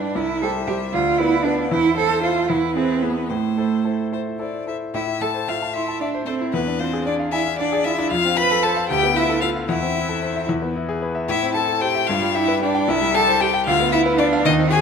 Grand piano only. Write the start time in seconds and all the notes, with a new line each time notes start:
Already playing: G2 G3 G4 B4
0.15 C2
0.42 G3 G4 C5
0.68 G3 G4 C5
0.94 D2
1.20 B3 F4 B4
1.45 B3 F4 B4
1.71 E2
1.97 E4 A4 C5
2.22 E4 A4 C5
2.50 E2
2.76 E4 G#4 B4
3.03 E4 G#4 B4
3.30 A2
3.57 E4 A4 C5
3.84 E4 A4 C5
4.12 E4 A4 C5
4.39 E4 A4 C5
4.66 E4 A4 C5
4.94 A2
5.07 E4
5.22 A4
5.34 C5
5.49 E5
5.62 A5
5.75 C6
5.88 A5
6.02 E5
6.14 C5
6.28 A4
6.41 E4
6.54 E2
6.67 D4
6.80 F4
6.93 G#4
7.06 D5
7.19 F5
7.33 G#5
7.46 F5
7.60 D5
7.72 G#4
7.86 F4
7.98 D4
8.11 F2
8.25 C4
8.37 F4
8.51 A4
8.64 C5
8.76 F5
8.90 D2
9.03 B3
9.16 F4
9.29 A4
9.42 B4
9.56 F5
9.69 E2
9.82 C4
9.95 E4
10.09 A4
10.23 C5
10.36 E5
10.49 E2
10.62 B3
10.76 E4
10.89 G#4
11.02 B4
11.15 E5
11.29 A2
11.42 C4
11.55 E4
11.68 A4
11.81 C5
11.95 E5
12.09 G2
12.22 G3
12.35 G4
12.48 B4
12.62 G4
12.75 G5
12.88 C2
13.01 G3
13.15 G4
13.28 C5
13.41 G4
13.54 G5
13.67 D2
13.80 B3
13.93 F4
14.06 B4
14.19 F4
14.33 F5
14.45 D#2
14.58 C4
14.72 F#4